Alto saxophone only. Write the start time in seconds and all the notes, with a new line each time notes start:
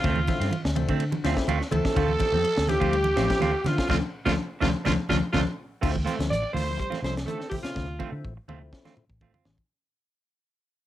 Already playing: F4
1.72 A4
2.69 G4
3.67 F4
3.90 F4
4.25 F4
4.61 F4
4.86 F4
5.09 F4
5.32 F4
6.30 D5
6.53 C5
7.04 C5
7.27 A4
7.50 G4
7.63 F4